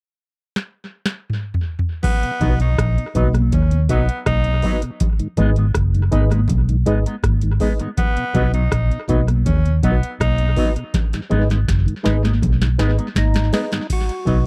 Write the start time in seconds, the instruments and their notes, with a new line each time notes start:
0.56 snare
1.06 snare
1.30 mid tom
1.54 floor tom
1.79 floor tom
2.03 tenor saxophone B3, kick, crash, low conga
2.23 tonewheel organ B2, closed hi-hat
2.40 fingered electric bass B1, clean electric guitar F#3 B3 D#4, tonewheel organ F#3 B3 D#4, reed electric piano D#4 F#4 B4 D#5, kick, closed hi-hat, low conga
2.60 tonewheel organ B2, clean electric guitar F#3 B3 D#4, tenor saxophone D#4, closed hi-hat
2.78 fingered electric bass A#1, kick, cross-stick, closed hi-hat
2.98 tonewheel organ B2, closed hi-hat
3.15 fingered electric bass B1, clean electric guitar F#3 B3 D#4, tonewheel organ F#3 B3 D#4, reed electric piano D#4 F#4 B4 D#5, kick, closed hi-hat, high conga
3.34 tonewheel organ B2, cross-stick, closed hi-hat, high conga
3.52 fingered electric bass D#2, tenor saxophone C#4, kick, closed hi-hat, low conga
3.71 tonewheel organ B2, closed hi-hat
3.89 fingered electric bass B1, tonewheel organ F#3 B3 D#4, clean electric guitar F#3 B3 D#4, tenor saxophone B3, reed electric piano D#4 F#4 B4 D#5, kick, closed hi-hat
4.09 closed hi-hat
4.26 fingered electric bass B1, tenor saxophone D#4, kick, cross-stick, closed hi-hat, high conga
4.44 tonewheel organ B2, closed hi-hat
4.62 tonewheel organ F#3 B3 D#4, clean electric guitar F#3 B3 D#4, reed electric piano D#4 F#4 B4 D#5, kick, open hi-hat
4.82 tonewheel organ B2, closed hi-hat
5.00 kick, closed hi-hat, low conga
5.20 tonewheel organ G#2 D#3, closed hi-hat
5.37 fingered electric bass G#1, clean electric guitar G#3 B3 D#4, tonewheel organ G#3 B3 D#4, reed electric piano D#4 G#4 B4 D#5, kick, closed hi-hat, low conga
5.56 tonewheel organ G#2 D#3, clean electric guitar G#3 B3 D#4, closed hi-hat
5.75 fingered electric bass F#1, kick, cross-stick, closed hi-hat
5.95 tonewheel organ G#2 D#3, closed hi-hat
6.12 fingered electric bass G#1, clean electric guitar G#3 B3 D#4, tonewheel organ G#3 B3 D#4, reed electric piano D#4 G#4 B4 D#5, kick, closed hi-hat
6.31 tonewheel organ G#2 D#3, clean electric guitar G#3 B3 D#4, cross-stick, closed hi-hat, high conga
6.48 fingered electric bass B1, kick, closed hi-hat, low conga
6.69 tonewheel organ G#2 D#3, closed hi-hat
6.86 fingered electric bass G#1, tonewheel organ G#3 B3 D#4, clean electric guitar G#3 B3 D#4, reed electric piano D#4 G#4 B4 D#5, kick, closed hi-hat
7.06 clean electric guitar G#3 B3 D#4, closed hi-hat
7.23 fingered electric bass G#1, kick, cross-stick, closed hi-hat, high conga
7.41 tonewheel organ G#2 D#3, closed hi-hat
7.60 clean electric guitar G#3 B3 D#4, tonewheel organ G#3 B3 D#4, reed electric piano D#4 G#4 B4 D#5, kick, open hi-hat
7.80 tonewheel organ G#2 D#3, clean electric guitar G#3 B3 D#4, closed hi-hat
7.97 tenor saxophone B3, kick, closed hi-hat, low conga
8.17 tonewheel organ B2, closed hi-hat
8.34 fingered electric bass B1, tonewheel organ F#3 B3 D#4, clean electric guitar F#3 B3 D#4, reed electric piano D#4 F#4 B4 D#5, kick, closed hi-hat, low conga
8.53 tonewheel organ B2, clean electric guitar F#3 B3 D#4, tenor saxophone D#4, closed hi-hat
8.72 fingered electric bass A#1, kick, cross-stick, closed hi-hat
8.90 tonewheel organ B2, closed hi-hat
9.08 fingered electric bass B1, tonewheel organ F#3 B3 D#4, clean electric guitar F#3 B3 D#4, reed electric piano D#4 F#4 B4 D#5, kick, closed hi-hat, high conga
9.28 tonewheel organ B2, cross-stick, closed hi-hat, high conga
9.46 fingered electric bass D#2, tenor saxophone C#4, kick, closed hi-hat, low conga
9.65 tonewheel organ B2, closed hi-hat
9.83 fingered electric bass B1, tonewheel organ F#3 B3 D#4, clean electric guitar F#3 B3 D#4, tenor saxophone B3, reed electric piano D#4 F#4 B4 D#5, kick, closed hi-hat
10.03 closed hi-hat
10.20 fingered electric bass B1, tenor saxophone D#4, kick, cross-stick, closed hi-hat, high conga
10.38 tonewheel organ B2, closed hi-hat
10.56 tonewheel organ F#3 B3 D#4, clean electric guitar F#3 B3 D#4, reed electric piano D#4 F#4 B4 D#5, kick, open hi-hat
10.76 tonewheel organ B2, closed hi-hat
10.94 kick, snare, closed hi-hat, low conga
11.13 tonewheel organ G#2 D#3, snare, closed hi-hat
11.30 fingered electric bass G#1, tonewheel organ G#3 B3 D#4, clean electric guitar G#3 B3 D#4, reed electric piano D#4 G#4 B4 D#5, closed hi-hat, low conga
11.49 tonewheel organ G#2 D#3, clean electric guitar G#3 B3 D#4, snare, closed hi-hat
11.68 fingered electric bass F#1, kick, snare, closed hi-hat
11.86 tonewheel organ G#2 D#3, closed hi-hat
12.03 fingered electric bass G#1, clean electric guitar G#3 B3 D#4, tonewheel organ G#3 B3 D#4, reed electric piano D#4 G#4 B4 D#5, snare, closed hi-hat
12.23 tonewheel organ G#2 D#3, clean electric guitar G#3 B3 D#4, snare, closed hi-hat, high conga
12.42 fingered electric bass B1, kick, closed hi-hat, low conga
12.61 tonewheel organ G#2 D#3, snare, closed hi-hat
12.78 fingered electric bass G#1, clean electric guitar G#3 B3 D#4, tonewheel organ G#3 B3 D#4, reed electric piano D#4 G#4 B4 D#5, snare, closed hi-hat
12.98 clean electric guitar G#3 B3 D#4, closed hi-hat
13.15 fingered electric bass G#1, tonewheel organ D#4, kick, snare, closed hi-hat, high conga
13.34 tonewheel organ G#2 D#3, snare, closed hi-hat
13.52 clean electric guitar G#3 B3 D#4, tonewheel organ G#3 B3 D#4, reed electric piano D#4 G#4 B4 D#5, snare, open hi-hat
13.71 tonewheel organ G#2 D#3, clean electric guitar G#3 B3 D#4, snare, closed hi-hat
13.90 tonewheel organ F#4, kick, closed hi-hat, crash
14.09 closed hi-hat
14.25 fingered electric bass B1, clean electric guitar F#3 B3 D#4, reed electric piano D#4 F#4 B4 D#5, kick, closed hi-hat